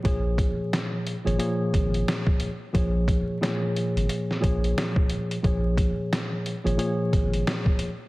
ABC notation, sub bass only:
X:1
M:4/4
L:1/16
Q:"Swing 16ths" 1/4=89
K:Bbm
V:1 name="Sub bass" clef=bass
B,,,3 z4 A,,, z2 A,,,2 z4 | B,,,3 z4 A,,, z2 B,,,2 z4 | B,,,3 z4 A,,, z2 A,,,2 z4 |]